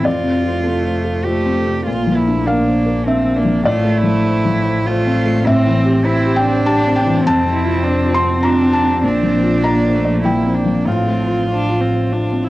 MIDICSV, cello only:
0, 0, Header, 1, 2, 480
1, 0, Start_track
1, 0, Key_signature, -1, "major"
1, 0, Tempo, 604839
1, 40, Time_signature, 3, 2, 24, 8
1, 1960, Tempo, 596421
1, 7240, Tempo, 617920
1, 9927, End_track
2, 0, Start_track
2, 0, Title_t, "Cello"
2, 0, Program_c, 0, 42
2, 30, Note_on_c, 0, 65, 64
2, 990, Note_on_c, 0, 67, 66
2, 1002, Note_off_c, 0, 65, 0
2, 1475, Note_off_c, 0, 67, 0
2, 1481, Note_on_c, 0, 65, 66
2, 1713, Note_on_c, 0, 64, 65
2, 1725, Note_off_c, 0, 65, 0
2, 1955, Note_on_c, 0, 62, 67
2, 1967, Note_off_c, 0, 64, 0
2, 2429, Note_on_c, 0, 60, 63
2, 2441, Note_off_c, 0, 62, 0
2, 2676, Note_on_c, 0, 62, 66
2, 2688, Note_off_c, 0, 60, 0
2, 2917, Note_off_c, 0, 62, 0
2, 2929, Note_on_c, 0, 65, 75
2, 3165, Note_on_c, 0, 64, 83
2, 3177, Note_off_c, 0, 65, 0
2, 3885, Note_on_c, 0, 65, 87
2, 3897, Note_off_c, 0, 64, 0
2, 4373, Note_on_c, 0, 60, 80
2, 4385, Note_off_c, 0, 65, 0
2, 4842, Note_on_c, 0, 64, 88
2, 4854, Note_off_c, 0, 60, 0
2, 5100, Note_on_c, 0, 62, 91
2, 5112, Note_off_c, 0, 64, 0
2, 5812, Note_on_c, 0, 60, 76
2, 5824, Note_off_c, 0, 62, 0
2, 6034, Note_off_c, 0, 60, 0
2, 6038, Note_on_c, 0, 64, 76
2, 6280, Note_on_c, 0, 62, 67
2, 6292, Note_off_c, 0, 64, 0
2, 6519, Note_on_c, 0, 60, 83
2, 6531, Note_off_c, 0, 62, 0
2, 7237, Note_off_c, 0, 60, 0
2, 7242, Note_on_c, 0, 62, 90
2, 8163, Note_off_c, 0, 62, 0
2, 8176, Note_on_c, 0, 64, 62
2, 8416, Note_on_c, 0, 62, 60
2, 8427, Note_off_c, 0, 64, 0
2, 8662, Note_on_c, 0, 65, 65
2, 8674, Note_off_c, 0, 62, 0
2, 9877, Note_off_c, 0, 65, 0
2, 9927, End_track
0, 0, End_of_file